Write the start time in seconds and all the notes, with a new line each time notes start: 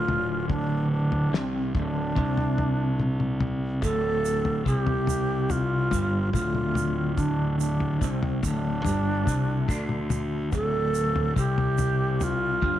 Already playing: D1 D2 F4
0.08 floor tom, mid tom
0.49 D4, kick, floor tom
0.91 D4
1.12 floor tom
1.32 C2 C3, snare
1.74 D1 D2 D4, kick, floor tom
2.15 C2 C3, kick, floor tom
2.37 floor tom
2.58 floor tom
3.00 mid tom
3.20 mid tom
3.40 floor tom, mid tom
3.82 D1 D2 A4, kick, floor tom, shaker
4.25 shaker
4.45 floor tom
4.65 C2 C3 G4, kick, shaker
4.87 floor tom
5.07 floor tom, shaker
5.50 F4, floor tom, shaker
5.91 G1 G2, kick, floor tom, shaker
6.33 D1 D2 F4, kick, mid tom, shaker
6.55 mid tom
6.75 floor tom, mid tom, shaker
7.16 D4, kick, floor tom, shaker
7.59 D4, shaker
7.80 floor tom
8.01 C2 C3, kick, shaker
8.23 floor tom
8.43 D1 D2 D4, kick, floor tom, shaker
8.85 G1 G2, floor tom, shaker
9.26 C2 C3, kick, floor tom, shaker
9.68 D2 D3, kick, mid tom, shaker
9.89 mid tom
10.10 floor tom, mid tom, shaker
10.52 D1 D2 A4, kick, floor tom, shaker
10.94 shaker
11.16 floor tom
11.36 C2 C3 G4, kick, shaker
11.58 floor tom
11.78 floor tom, shaker
12.21 F4, floor tom, shaker
12.61 G1 G2, kick, floor tom